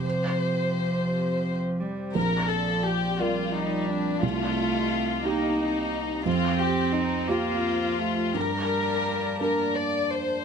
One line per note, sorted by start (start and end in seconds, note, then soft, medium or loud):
0.00 2.15 C3 soft
0.00 4.21 C4 medium
0.00 2.15 G4 medium
0.00 2.15 C5 medium
0.00 1.59 C5 medium
0.05 1.82 F3 medium
1.80 2.16 G3 medium
2.14 4.19 A#1 soft
2.14 3.20 F3 medium
2.14 4.22 F4 medium
2.14 2.48 A#4 medium
2.14 4.22 D5 medium
2.49 2.84 A4 soft
2.85 3.19 G4 soft
3.19 4.23 G3 medium
3.19 3.54 F4 soft
3.19 4.19 A#4 soft
3.19 4.19 D5 soft
3.54 3.88 D#4 soft
3.86 4.22 D4 medium
4.22 6.22 C2 soft
4.22 5.23 A3 medium
4.22 8.31 C4 medium
4.22 5.24 F4 medium
4.22 8.35 G4 medium
4.22 6.26 D#5 medium
5.23 5.90 A#3 medium
5.23 6.26 D#4 medium
5.23 6.22 D#4 soft
5.23 6.22 G4 soft
6.25 8.31 F2 medium
6.25 7.29 C4 medium
6.25 6.59 F4 medium
6.25 8.35 C5 medium
6.60 6.94 G4 medium
6.94 7.29 D#4 medium
7.28 8.00 A#3 medium
7.28 8.31 F4 soft
7.28 8.35 F4 medium
7.28 8.31 G4 soft
7.99 8.36 A3 medium
8.34 10.44 G2 soft
8.34 10.13 G3 medium
8.34 10.45 A#3 medium
8.34 9.35 A#4 medium
8.34 10.45 D5 medium
8.34 10.45 A5 medium
9.41 10.44 D4 soft
9.41 10.44 A#4 soft
9.41 9.75 A#4 soft
9.76 10.13 D5 soft
10.12 10.45 C5 soft